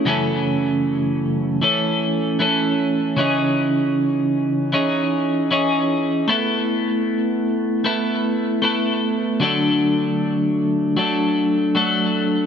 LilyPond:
\new Staff \with { instrumentName = "Clean electric guitar" } { \time 4/4 \key cis \minor \tempo 4 = 77 <fis, cis e a cis' a'>2 <e a cis' a'>4 <e a cis' a'>4 | <cis e cis' dis' gis'>2 <e cis' dis' gis'>4 <e cis' dis' gis'>4 | <a b e' a'>2 <a b e' a'>4 <a b e' a'>4 | <d fis a d' a'>2 <fis a d' a'>4 <fis a d' a'>4 | }